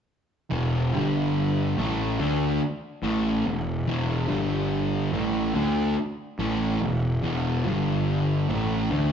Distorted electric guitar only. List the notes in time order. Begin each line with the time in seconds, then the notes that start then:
0.50 E2 B2 E3
0.93 G2 D3 G3
1.77 A2 E3 A3
2.19 D3 A3 D4
3.02 A2 E3 A3
3.45 E2 B2
3.87 E2 B2 E3
4.28 G2 D3 G3
5.14 A2 E3 A3
5.54 D3 A3 D4
6.39 A2 E3 A3
6.81 E2 B2
7.23 E2 B2 E3
7.65 G2 D3 G3
8.49 A2 E3 A3
8.90 D3 A3 D4